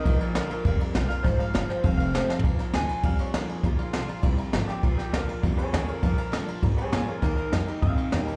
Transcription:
<<
  \new Staff \with { instrumentName = "Honky-tonk piano" } { \time 4/4 \key bes \mixolydian \tempo 4 = 201 <d'' f'' bes''>8 <d'' f'' bes''>8 <d'' f'' bes''>8 <d'' f'' bes''>8 <d'' f'' g''>8 <d'' f'' bes''>8 <d'' f'' g''>8 <d'' f'' bes''>8 | <d'' f'' bes''>8 <d'' f'' bes''>8 <d'' f'' bes''>8 <d'' f'' g''>8 <c'' f'' a''>8 <c'' f'' a''>8 <c'' f'' a''>8 <c'' f'' a''>8 | <d'' f'' bes''>8 <d'' f'' bes''>8 <d'' f''>8 <d'' f'' bes''>8 <d'' f'' bes''>8 <d'' f'' bes''>8 <d'' f'' bes''>8 <d'' f'' bes''>8 | <d'' f'' bes''>8 <d'' f'' bes''>8 <d'' f'' bes''>8 <d'' f'' bes''>8 <d'' f'' bes''>8 <d'' f'' bes''>8 <d'' f'' bes''>8 <d'' f'' bes''>8 |
<d'' f'' bes''>8 <d'' f'' bes''>8 <d'' f'' bes''>8 <d'' f'' bes''>8 <d'' f'' bes''>8 <d'' f'' c'''>8 <d'' f'' bes''>8 <d'' f'' bes''>8 | <d'' f'' bes''>8 <d'' f'' bes''>8 <d'' f'' bes''>8 <d'' f'' bes''>8 <d'' f'' bes''>8 <d'' f'' bes''>8 <f'' bes''>8 <d'' f'' bes''>8 | <ees'' g'' bes''>8 <ees'' g'' bes''>8 <ees'' g'' bes''>8 <ees'' g'' bes''>8 <ees'' g'' bes''>8 <ees'' g'' bes''>8 <ees'' g'' bes''>8 <ees'' g'' bes''>8 | }
  \new Staff \with { instrumentName = "Clean electric guitar" } { \time 4/4 \key bes \mixolydian <bes' ees''>8 <f' bes'>8 <f' bes'>8 <f' bes'>8 bes'8 r4 f''8 | c''8 f''8 f''8 c''8 f''8 f''8 c''8 f''8 | r4 aes''4 f''8 des''8 bes'8 aes'8 | f'8 f'2 r4 g'8 |
f'8 g'8 bes'4 r8 <aes' des''>8 <aes' des''>8 <f' bes'>8 | <f' bes'>8 bes'8 r4. <aes' des''>8 <aes' des''>8 <f' bes'>8 | <f' bes'>8 bes'8 r4 f''2 | }
  \new Staff \with { instrumentName = "Steel-string acoustic guitar" } { \time 4/4 \key bes \mixolydian << { r4 <d bes d' f'>8 <d' f'>8 r4 <d bes d' f'>8 <d' f'>8 | r2. <f a c' f'>8 <c' f'>8 | r4 <d bes d' f'>8 <d' f'>8 r4 <d bes d' f'>8 <d' f'>8 | r4 <d bes d' f'>8 <d' f'>8 r4 <d bes d' f'>8 <d' f'>8 |
r4 <d bes d' f'>8 <d' f'>8 r4 <d bes d' f'>4 | r4 <d bes d' f'>8 <d' f'>8 r4 <d bes d' f'>8 <d' f'>8 | r4 <ees bes ees' g'>8 <ees' g'>8 r4 <ees bes ees' g'>4 | } \\ { bes,2 f,2 | aes,4 g,4 f,2 | r2 f,2 | bes,2 f,2 |
bes,2 f,2 | bes,2 f,2 | ees2 bes,2 | } >> }
  \new Staff \with { instrumentName = "Clean electric guitar" } { \clef bass \time 4/4 \key bes \mixolydian <bes, f>4 <bes, f>4 <bes, g>4 <bes, f>4 | <bes, f>4 <bes, f>4 <f, c>4 <f, c>4 | <bes, f>4 <bes, f>4 <bes, g>4 <bes, f>4 | <bes, f>4 <bes, f>4 <bes, g>4 <bes, f>4 |
<bes, f>4 <bes, f>4 <bes, g>4 <bes, f>4 | <bes, f>4 <bes, f>4 <bes, g>4 <bes, f>4 | <ees bes>4 <ees bes>4 <ees c'>4 <ees bes>4 | }
  \new Staff \with { instrumentName = "Upright bass" } { \clef bass \time 4/4 \key bes \mixolydian bes,,4. r8 f,,8 r8 bes,,8 r8 | aes,,8 r8 g,,8 r8 f,,4. r8 | bes,,8 r8 d,8 r8 f,8 r8 ees,8 r8 | d,8 r8 c,8 r8 bes,,8 r8 aes,,8 r8 |
bes,,8 r8 des,8 r8 d,8 r8 ees,8 r8 | f,8 r8 g,8 r8 aes,8 r8 bes,8 r8 | ees,8 r8 f,8 r8 g,8 r8 e,8 r8 | }
  \new DrumStaff \with { instrumentName = "Drums" } \drummode { \time 4/4 <bd cymr>8 cymr8 <cymr sn>8 cymr8 <bd cymr>8 cymr8 <cymr sn>8 <cymr sn>8 | <bd cymr sn>8 cymr8 <cymr sn>8 <cymr sn>8 <bd cymr>8 cymr8 \tuplet 3/2 { <cymr sn>16 r16 r16 sn16 r16 tomfh16 } | <bd cymr>8 <cymr sn>8 <cymr sn>8 cymr8 <bd cymr>8 cymr8 <cymr sn>8 cymr8 | <bd cymr sn>8 cymr8 <cymr sn>8 cymr8 <bd cymr>8 cymr8 <cymr sn>8 <cymr sn>8 |
<bd cymr>8 <cymr sn>8 <cymr sn>8 cymr8 <bd cymr>8 cymr8 <cymr sn>8 cymr8 | <bd cymr>8 cymr8 <cymr sn>8 cymr8 <bd cymr>8 cymr8 <cymr sn>8 cymr8 | <bd cymr sn>8 cymr8 <cymr sn>8 cymr8 <bd cymr>8 cymr8 <cymr sn>8 cymr8 | }
>>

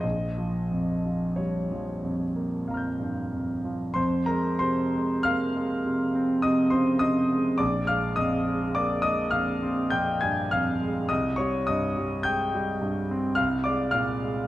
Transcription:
<<
  \new Staff \with { instrumentName = "Grand piano" } { \time 3/4 \key f \minor \tempo 4 = 51 ees''4 des''4 <f'' bes'' f''' g'''>4 | <c'' c'''>16 <bes' bes''>16 <c'' c'''>8 <f'' f'''>4 <ees'' ees'''>16 <c'' c'''>16 <ees'' ees'''>8 | <d'' d'''>16 <f'' f'''>16 <ees'' ees'''>8 <d'' d'''>16 <ees'' ees'''>16 <f'' f'''>8 <g'' g'''>16 <aes'' aes'''>16 <f'' f'''>8 | <ees'' ees'''>16 <des'' des'''>16 <ees'' ees'''>8 <g'' g'''>4 <f'' f'''>16 <d'' d'''>16 <f'' f'''>8 | }
  \new Staff \with { instrumentName = "Grand piano" } { \clef bass \time 3/4 \key f \minor bes,,16 f16 f,16 f16 g16 f16 f,16 bes16 f,16 g,16 f,16 f16 | f,16 aes16 c16 aes16 bes16 aes16 c16 c'16 c16 des16 c16 aes16 | bes,,16 aes16 f,16 aes16 bes16 aes16 f,16 c'16 f,16 g,16 f,16 aes16 | c,16 g16 g,16 g16 aes16 g16 g,16 c'16 c,16 aes16 bes,16 aes16 | }
>>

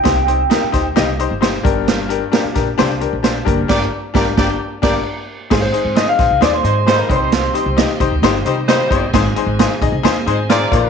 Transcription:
<<
  \new Staff \with { instrumentName = "Clean electric guitar" } { \time 4/4 \key aes \lydian \tempo 4 = 132 g''2~ g''8 r4. | r1 | r1 | aes'16 c''8. ees''16 f''8. d''16 c''8. c''16 bes'16 c''8~ |
c''4 r2. | r1 | }
  \new Staff \with { instrumentName = "Upright piano" } { \time 4/4 \key aes \lydian <ees' g' c''>16 r16 <ees' g' c''>16 r16 <ees' g' bes'>16 r16 <ees' g' c''>16 r16 <ees' g' ees''>16 r16 <ees' g' c''>16 r16 <ees' g' c''>16 r16 <d' g' bes'>8~ | <d' g' bes'>8 <d' g' bes'>16 r16 <d' g' bes'>16 r16 <d' g' bes'>16 r16 <d' g' c''>16 r16 <d' g' bes'>16 r16 <d' g' c''>16 r16 <d' g' bes'>16 r16 | <d' g' bes'>8 r8 <d' g' bes'>8 <d' g'>8 r8 <d' g' bes'>8 r4 | <ees' aes' c''>16 r16 <ees' aes' c''>16 r16 <ees' aes' c''>16 r16 <ees' aes' c''>16 r16 <ees' aes' c''>16 r16 <ees' aes' ees''>16 r16 <ees' aes' c''>16 r16 <ees' g' b' c''>8~ |
<ees' g' b' c''>8 <ees' g' c''>16 r16 <ees' g' ees''>16 r16 <ees' g' c''>16 r16 <ees' g' c''>16 r16 <ees' g' c''>16 r16 <ees' g' c''>16 r16 <ees' g' c''>16 r16 | <ees' aes' c''>16 r16 <ees' aes' c''>16 r16 <ees' aes' c''>16 r16 <ees' aes' ees''>16 r16 <ees' aes' c''>16 r16 <ees' aes' c''>16 r16 <ees' aes' c''>16 r16 <f' bes' d''>8 | }
  \new Staff \with { instrumentName = "Upright piano" } { \clef bass \time 4/4 \key aes \lydian c4. r2 g,8~ | g,4 r2 r8 g,8 | r1 | aes,4. r2 c8~ |
c4 r2. | aes,4. r2 bes,8 | }
  \new Staff \with { instrumentName = "Saxophone section" } { \time 4/4 \key aes \lydian r1 | r1 | <bes g' d''>8 r8 <bes g' d''>8 <bes g' d''>8 r8 <bes g' d''>8 r4 | r2 r8 <aes ees' c''>16 r16 <g ees' c''>4 |
r2 r8 <g ees' c''>16 r16 <g ees' c''>4 | r2 r8 <aes ees' c''>16 r16 <bes f' d''>4 | }
  \new Staff \with { instrumentName = "Tonewheel organ" } { \time 4/4 \key aes \lydian r1 | r1 | r1 | <aes aes'>2.~ <aes aes'>8 <g g'>8~ |
<g g'>1 | <aes aes'>2.~ <aes aes'>8 <f f'>8 | }
  \new Staff \with { instrumentName = "Tonewheel organ" } { \clef bass \time 4/4 \key aes \lydian r1 | r1 | r1 | <ees c'>1~ |
<ees c'>1~ | <ees c'>2.~ <ees c'>8 <d bes>8 | }
  \new Staff \with { instrumentName = "Upright bass" } { \clef bass \time 4/4 \key aes \lydian c,4 r8 d,8 c,8. g,,8. g,,8~ | g,,4 r8 bes,,8 c,8. bes,,8. fis,,8 | g,,8 r8 g,,8 g,,8 r8 g,,8 r4 | aes,,8 r16 aes,,8 r16 bes,,16 c,16 ees,8 aes,4 c,8~ |
c,8 r16 c,8 r16 c,16 d,16 g,,8 c4 g,,8 | aes,,8 r16 aes,,8 r16 bes,,16 c,16 ees,8 aes,4 bes,,8 | }
  \new DrumStaff \with { instrumentName = "Drums" } \drummode { \time 4/4 <hh bd sn>8 hh8 <hh sn>8 <hh bd sn>8 <hh sn>8 hh8 <hh sn>8 <hh bd>8 | <hh sn>8 hh8 <hh sn>8 <hh bd sn>8 <hh sn>8 hh8 <hh sn>8 <hh bd>8 | <cymc bd sn>4 <bd sn>8 <bd sn>8 r8 <cymc bd sn>8 r4 | <cymc bd sn>8 hh8 <hh sn>8 <hh bd sn>8 <hh sn>8 hh8 <hh sn>8 <hh bd>8 |
<hh sn>8 hh8 <hh sn>8 <hh bd>8 <hh sn>8 hh8 <hh sn>8 <hh bd>8 | <hh bd sn>8 hh8 <hh sn>8 <hh bd>8 <hh sn>8 hh8 <hh sn>8 <hh bd>8 | }
>>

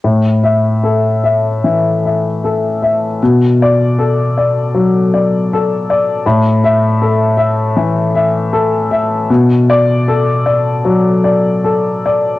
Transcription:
\new Staff \with { instrumentName = "Grand piano" } { \time 4/4 \key b \phrygian \tempo 4 = 78 << { r8 e''4 r2 r8 | r8 d''4 r2 r8 | r8 e''4 r2 r8 | r8 d''4 r2 r8 | } \\ { a,4 a'8 e''8 e8 e''8 a'8 e''8 | b,4 a'8 d''8 fis8 d''8 a'8 d''8 | a,4 a'8 e''8 e8 e''8 a'8 e''8 | b,4 a'8 d''8 fis8 d''8 a'8 d''8 | } >> }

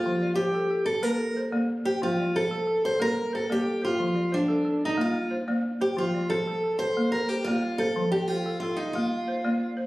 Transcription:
<<
  \new Staff \with { instrumentName = "Balafon" } { \time 12/8 \key f \major \tempo 4. = 121 c''8 d''8 c''4 a'4. r8 c''8 d''4 c''8~ | c''8 d''8 c''4 a'4. r8 c''8 d''4 c''8~ | c''8 d''8 c''4 a'4. r8 c''8 d''4 c''8~ | c''8 d''8 c''4 a'4. r8 c''8 d''4 c''8~ |
c''8 d''8 c''4 a'4. r8 c''8 d''4 c''8 | }
  \new Staff \with { instrumentName = "Balafon" } { \time 12/8 \key f \major f4 r8 a'4 r8 bes4 r8 bes4 r8 | f4 r8 a'4 r8 bes4 r8 bes4 r8 | f4 r8 a'4 r8 bes4 r8 bes4 r8 | f4 r8 a'4 r8 bes4 r8 bes4 r8 |
f4 r8 a'4 r8 bes4 r8 bes4 r8 | }
  \new Staff \with { instrumentName = "Steel-string acoustic guitar" } { \time 12/8 \key f \major f'4 g'4. a'8 bes'4 r4. g'8 | f'4 a'4. c''8 bes'4 a'8 g'4 f'8~ | f'4 d'4. ees'8 f'4 r4. g'8 | f'4 a'4. c''4 bes'8 g'8 f'4 a'8~ |
a'8 g'8 f'4 f'8 ees'8 f'2~ f'8 r8 | }
>>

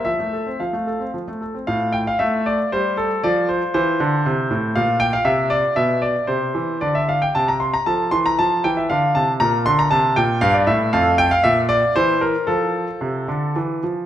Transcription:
<<
  \new Staff \with { instrumentName = "Grand piano" } { \time 3/4 \key f \major \tempo 4 = 116 << { e''4 f''4 r4 | f''8 g''16 f''16 e''8 d''8 c''8 a'8 | d''8 c''8 c''2 | f''8 g''16 f''16 e''8 d''8 e''8 d''8 |
c''4 d''16 e''16 f''16 g''16 a''16 bes''16 c'''16 bes''16 | a''8 c'''16 bes''16 a''8 g''16 e''16 f''8 a''8 | bes''8 c'''16 bes''16 a''8 g''8 f''16 d''16 e''8 | f''8 g''16 f''16 e''8 d''8 c''8 bes'8 |
a'2 r4 | } \\ { r2. | f'2. | f'2. | f'2 r4 |
g'2 r4 | a'2 r4 | bes'2 r4 | a'4 r2 |
f'2. | } >> }
  \new Staff \with { instrumentName = "Grand piano" } { \clef bass \time 3/4 \key f \major f16 a16 a'16 c'16 f16 a16 a'16 c'16 f16 a16 a'16 c'16 | a,4 a4 g4 | f4 e8 d8 c8 a,8 | bes,4 c4 b,4 |
c8 e8 d4 c4 | f8 e8 f8 e8 d8 c8 | bes,8 d8 c8 bes,8 g,8 a,8 | f,4 bes,4 e4 |
f4 c8 d8 e8 f8 | }
>>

